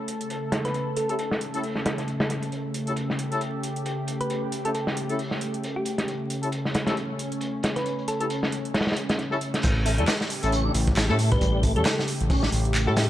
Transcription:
Already playing: C#3 A3 A4
0.08 closed hi-hat
0.21 closed hi-hat
0.30 closed hi-hat
0.52 snare, closed hi-hat
0.65 B4, snare, closed hi-hat
0.74 closed hi-hat
0.97 A4, closed hi-hat
1.09 C#4 E4 G4 A4, closed hi-hat
1.19 closed hi-hat
1.31 snare
1.41 closed hi-hat
1.54 C#4 E4 G4 A4, closed hi-hat
1.63 closed hi-hat, open hi-hat
1.75 snare
1.86 snare, closed hi-hat
1.98 snare, closed hi-hat
2.08 closed hi-hat
2.20 snare, closed hi-hat
2.30 snare, closed hi-hat
2.42 closed hi-hat
2.52 G4, closed hi-hat
2.74 closed hi-hat
2.87 C#4 E4 G4 A4, closed hi-hat
2.96 closed hi-hat
3.10 snare
3.19 closed hi-hat
3.32 C#4 E4 G4 A4, closed hi-hat
3.41 closed hi-hat
3.63 closed hi-hat
3.76 closed hi-hat
3.85 closed hi-hat
4.07 closed hi-hat
4.21 B4, closed hi-hat
4.30 closed hi-hat
4.52 closed hi-hat
4.65 C#4 E4 G4 A4, closed hi-hat
4.75 A4, closed hi-hat
4.87 snare
4.97 closed hi-hat
5.09 C#4 E4 G4 A4, closed hi-hat
5.19 closed hi-hat, open hi-hat
5.31 snare
5.41 closed hi-hat
5.54 closed hi-hat
5.63 closed hi-hat
5.76 G4
5.85 closed hi-hat
5.98 snare, closed hi-hat
6.08 C#4, closed hi-hat
6.30 closed hi-hat
6.43 C#4 E4 G4 A4, closed hi-hat
6.52 closed hi-hat
6.65 snare
6.74 snare, closed hi-hat
6.87 C#4 E4 G4 A4, snare, closed hi-hat
6.97 closed hi-hat
7.19 closed hi-hat
7.32 closed hi-hat
7.41 closed hi-hat
7.63 snare, closed hi-hat
7.76 B4, snare, closed hi-hat
7.86 closed hi-hat
7.98 closed hi-hat
8.08 A4, closed hi-hat
8.21 C#4 E4 G4 A4, closed hi-hat
8.30 closed hi-hat
8.43 snare
8.52 closed hi-hat
8.65 closed hi-hat
8.74 snare, closed hi-hat
8.80 snare, closed hi-hat
8.87 snare, closed hi-hat
8.92 snare, closed hi-hat
8.97 closed hi-hat
9.09 snare, closed hi-hat
9.18 snare, closed hi-hat
9.32 C#4 E4 G4 A4, closed hi-hat
9.41 closed hi-hat
9.54 snare, closed hi-hat
9.63 A1 C#3 A3 G4, kick, closed hi-hat, crash
9.86 A3, closed hi-hat, open hi-hat
9.98 E2 G3 C#4 E4 G4 A4, closed hi-hat
10.08 D4, snare, clap, closed hi-hat
10.21 snare
10.30 closed hi-hat, open hi-hat
10.43 A1 C#4 E4 G4 A4, closed hi-hat
10.52 C#4, closed hi-hat
10.65 D4
10.74 A1, closed hi-hat, open hi-hat
10.87 kick, closed hi-hat
10.97 snare, clap, closed hi-hat
11.10 A2 A3 C#4 E4 G4 A4
11.19 A3, closed hi-hat, open hi-hat
11.32 G3 B4, kick, closed hi-hat
11.41 A1, kick, closed hi-hat
11.63 A3, kick, closed hi-hat, open hi-hat
11.76 E2 G3 C#4 E4 G4 A4, closed hi-hat
11.85 D4 A4, snare, clap, closed hi-hat
11.99 snare
12.08 closed hi-hat, open hi-hat
12.21 A1, closed hi-hat
12.30 C#4, kick, closed hi-hat, open hi-hat
12.43 D4, snare
12.52 A1, closed hi-hat, open hi-hat
12.65 closed hi-hat
12.75 clap, closed hi-hat
12.87 A2 A3 C#4 E4 G4 A4
12.96 A3, snare, closed hi-hat, open hi-hat

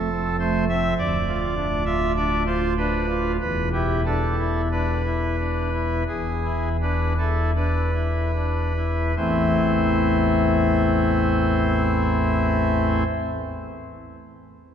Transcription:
Already playing: F1 F2 A4
0.11 C4
0.40 A3 C5
0.69 C4 E5
0.98 D1 D2 D5
1.28 F4
1.56 D4
1.85 F4 E5
2.17 D4 D5
2.46 F4 C5
2.78 D4 B4
3.09 F4
3.41 E1 E2 B4
3.73 E4 G4
4.06 D4 A4
4.39 E4
4.71 D4 B4
5.06 E4
5.39 D4
5.73 E4
6.08 E1 E2 G#4
6.44 E4
6.81 D4 B4
7.18 E4 A4
7.56 D4 B4
7.95 E4
8.36 D4
8.77 E4
9.17 A1 E2 E3 A3 C4 E4 C5

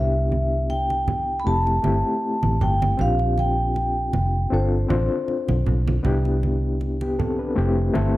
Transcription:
Already playing: C2 B3 D4 E4 G4 E5
0.32 high conga
0.70 G5, muted conga
0.90 muted conga
1.08 high conga, low conga
1.40 B5
1.44 F1 A3 C4 E4 G4 A5
1.67 muted conga
1.82 G1 A3 C4 E4 G4, high conga
2.43 A1, high conga
2.61 G1 G5, low conga
2.82 high conga
2.97 A#1 C4 D4 F4 G4 F5, muted conga, low conga
3.19 muted conga
3.38 G5, high conga
3.76 muted conga
4.13 F1, high conga, low conga
4.50 G1 C4 D4 F4 A4 C5
4.88 A1 C4 D4 F4 C5, high conga
5.28 muted conga
5.49 B1, muted conga, high conga
5.66 B1, low conga
5.88 high conga
6.03 C2 B3 D4 E4 G4, muted conga, low conga
6.25 muted conga
6.43 high conga
6.81 muted conga
7.01 B3 G4, muted conga
7.19 C4 A4, high conga, low conga
7.39 D4 B4
7.55 F1 A3 C4 E4 G4
7.94 G1 A3 C4 E4 A4, high conga

